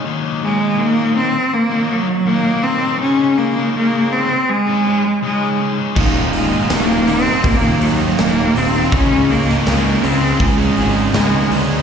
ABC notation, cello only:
X:1
M:4/4
L:1/16
Q:1/4=81
K:Ebdor
V:1 name="Cello"
z2 A,2 B,2 C2 B,2 G,2 B,2 C2 | D2 B,2 B,2 C2 A,4 A,3 z | z2 A,2 B,2 C2 B,2 G,2 B,2 C2 | D2 B,2 B,2 C2 A,4 A,3 z |]